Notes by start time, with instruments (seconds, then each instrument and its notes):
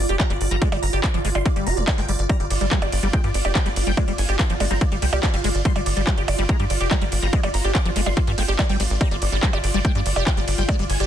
Already playing: synth texture F4
0.09 analog synth bass F1, acid bass G4, supersaw synth D5, closed hi-hat
0.20 acid bass G3, supersaw synth A#5, kick, clap, closed hi-hat, percussion blips
0.30 analog synth bass G1, acid bass G3, supersaw synth D5, closed hi-hat
0.41 analog synth bass G1, supersaw synth D5, open hi-hat
0.51 analog synth bass G1, acid bass G3, supersaw synth A#5, closed hi-hat
0.62 acid bass G#3, supersaw synth D5, kick, closed hi-hat
0.72 analog synth bass G1, acid bass G3, supersaw synth D5, closed hi-hat, percussion blips
0.83 analog synth bass G1, supersaw synth A#5, open hi-hat
0.93 analog synth bass G1, acid bass G4, supersaw synth D5, closed hi-hat
1.04 acid bass D4, supersaw synth D6, kick, clap, closed hi-hat
1.14 analog synth bass G1, acid bass F3, supersaw synth D5, closed hi-hat
1.25 analog synth bass G1, acid bass G#3, supersaw synth D5, open hi-hat
1.35 analog synth bass G1, acid bass G3, supersaw synth C6, closed hi-hat, percussion blips
1.46 acid bass G#3, supersaw synth D5, kick, closed hi-hat
1.56 analog synth bass G1, acid bass G3, supersaw synth D5, closed hi-hat
1.67 analog synth bass F1, acid bass G4, supersaw synth A#5, open hi-hat
1.77 analog synth bass F1, acid bass G3, supersaw synth D5, closed hi-hat
1.88 acid bass G#3, kick, clap, closed hi-hat, percussion blips
1.98 analog synth bass G1, acid bass G#3, supersaw synth G5, clap, closed hi-hat
2.08 analog synth bass G1, acid bass G3, supersaw synth D5, open hi-hat
2.19 analog synth bass G1, supersaw synth D5, closed hi-hat
2.29 acid bass G3, synth texture F4, supersaw synth A#5, kick, closed hi-hat, percussion blips
2.40 analog synth bass G1, acid bass G3, supersaw synth D5, closed hi-hat
2.50 analog synth bass G1, supersaw synth D5, open hi-hat, ride
2.61 analog synth bass G1, acid bass G3, supersaw synth D5, closed hi-hat
2.71 acid bass G3, kick, clap, closed hi-hat
2.82 analog synth bass G1, acid bass G4, supersaw synth D5, closed hi-hat, percussion blips
2.92 analog synth bass G1, supersaw synth D5, open hi-hat, ride
3.03 analog synth bass G1, acid bass G3, supersaw synth D5, closed hi-hat
3.13 acid bass G#3, supersaw synth G5, kick, closed hi-hat
3.24 analog synth bass G2, acid bass G3, supersaw synth D5, closed hi-hat
3.34 analog synth bass G1, supersaw synth D5, open hi-hat, ride
3.45 analog synth bass F1, acid bass G4, supersaw synth D5, closed hi-hat, percussion blips
3.55 acid bass G3, supersaw synth G5, kick, clap, closed hi-hat
3.66 analog synth bass G1, acid bass G3, supersaw synth D5, closed hi-hat
3.76 analog synth bass G1, supersaw synth D5, open hi-hat, ride
3.87 analog synth bass G1, acid bass G3, supersaw synth G5, closed hi-hat
3.97 acid bass G#3, supersaw synth D5, kick, closed hi-hat, percussion blips
4.08 analog synth bass G1, acid bass G3, supersaw synth D5, closed hi-hat
4.18 analog synth bass G1, supersaw synth G#5, open hi-hat, ride
4.29 analog synth bass G1, acid bass G4, supersaw synth D5, closed hi-hat
4.39 acid bass D4, supersaw synth C6, kick, clap, closed hi-hat
4.50 analog synth bass G1, acid bass F3, supersaw synth D5, closed hi-hat
4.60 analog synth bass G1, acid bass G#3, synth arpeggio sound C4, supersaw synth D5, open hi-hat, ride, percussion blips
4.71 analog synth bass G1, acid bass G3, synth arpeggio sound C4, supersaw synth A#5, closed hi-hat
4.81 acid bass G#3, supersaw synth D5, kick, closed hi-hat
4.92 analog synth bass G1, acid bass G3, supersaw synth D5, closed hi-hat
5.02 analog synth bass C2, acid bass G3, supersaw synth G5, open hi-hat, ride
5.13 analog synth bass C2, synth arpeggio sound A#3, acid bass G4, supersaw synth D5, closed hi-hat, percussion blips
5.23 synth arpeggio sound A#3, acid bass G4, supersaw synth D5, kick, clap, closed hi-hat
5.34 analog synth bass G1, acid bass G3, supersaw synth F5, closed hi-hat
5.44 analog synth bass G1, acid bass G#3, supersaw synth D5, open hi-hat, ride
5.55 analog synth bass G1, supersaw synth D5, closed hi-hat
5.65 acid bass G3, supersaw synth C6, kick, closed hi-hat
5.76 analog synth bass G1, acid bass G3, supersaw synth D5, closed hi-hat, percussion blips
5.86 analog synth bass G1, supersaw synth D5, open hi-hat, ride
5.97 analog synth bass G1, acid bass G3, supersaw synth D5, closed hi-hat
6.07 acid bass G3, kick, clap, closed hi-hat
6.17 analog synth bass G1, acid bass G4, supersaw synth D5, closed hi-hat
6.28 analog synth bass G1, supersaw synth D5, open hi-hat, ride, percussion blips
6.39 analog synth bass G1, acid bass G3, supersaw synth D5, closed hi-hat
6.49 acid bass G#3, supersaw synth A#5, kick, closed hi-hat
6.60 analog synth bass G2, acid bass G3, supersaw synth D5, closed hi-hat
6.70 analog synth bass G1, supersaw synth D5, open hi-hat, ride
6.80 analog synth bass F1, acid bass G4, supersaw synth D5, closed hi-hat
6.91 acid bass G3, supersaw synth A#5, kick, clap, closed hi-hat, percussion blips
7.01 analog synth bass G1, acid bass G3, supersaw synth D5, closed hi-hat
7.12 analog synth bass G1, supersaw synth D5, open hi-hat, ride
7.22 analog synth bass G1, acid bass G3, supersaw synth A#5, closed hi-hat
7.33 acid bass G#3, supersaw synth D5, kick, closed hi-hat
7.43 analog synth bass G1, acid bass G3, supersaw synth D5, closed hi-hat, percussion blips
7.54 analog synth bass G1, supersaw synth A#5, open hi-hat, ride
7.64 analog synth bass G1, acid bass G4, supersaw synth D5, closed hi-hat
7.75 acid bass D4, supersaw synth D6, kick, clap, closed hi-hat
7.85 analog synth bass G1, acid bass F3, supersaw synth D5, closed hi-hat
7.96 analog synth bass G1, acid bass G#3, supersaw synth D5, open hi-hat, ride
8.06 analog synth bass G1, acid bass G3, supersaw synth C6, percussion blips
8.17 acid bass G#3, supersaw synth D5, kick, closed hi-hat
8.27 analog synth bass G2, acid bass G3, supersaw synth D5, closed hi-hat
8.38 analog synth bass G1, acid bass G#3, supersaw synth G5, open hi-hat, ride
8.48 analog synth bass G1, acid bass G4, supersaw synth D5, closed hi-hat
8.59 acid bass G3, supersaw synth D5, kick, clap, closed hi-hat, percussion blips
8.69 analog synth bass G#1, acid bass G3, supersaw synth G5, closed hi-hat
8.80 analog synth bass G#1, acid bass G3, supersaw synth D5, open hi-hat, ride
8.90 analog synth bass G#1, supersaw synth D5, closed hi-hat
9.01 acid bass G3, supersaw synth A#5, kick, closed hi-hat, percussion blips
9.11 analog synth bass G1, acid bass G3, supersaw synth D5, closed hi-hat
9.22 analog synth bass G1, supersaw synth D5, open hi-hat, ride
9.32 analog synth bass G1, acid bass G3, supersaw synth D5, closed hi-hat
9.43 acid bass G3, kick, clap, closed hi-hat
9.53 analog synth bass G1, acid bass G4, supersaw synth D5, closed hi-hat, percussion blips
9.64 analog synth bass G1, supersaw synth D5, open hi-hat, ride
9.74 analog synth bass G1, acid bass G3, supersaw synth D5, closed hi-hat
9.85 acid bass G#3, supersaw synth G5, kick, closed hi-hat
9.95 analog synth bass G2, acid bass G3, supersaw synth D5, closed hi-hat
10.06 analog synth bass G1, supersaw synth D5, open hi-hat, ride
10.16 analog synth bass F1, acid bass G4, supersaw synth D5, closed hi-hat, percussion blips
10.27 acid bass G3, supersaw synth G5, kick, clap, closed hi-hat
10.37 analog synth bass G1, acid bass G3, supersaw synth D5, closed hi-hat
10.48 analog synth bass G1, supersaw synth D5, open hi-hat, ride
10.58 analog synth bass G1, acid bass G3, supersaw synth G5, closed hi-hat
10.69 acid bass G#3, supersaw synth D5, kick, closed hi-hat, percussion blips
10.79 analog synth bass G1, acid bass G3, supersaw synth D5, closed hi-hat
10.90 analog synth bass G1, supersaw synth G#5, open hi-hat, ride
11.00 analog synth bass G1, acid bass G4, supersaw synth D5, closed hi-hat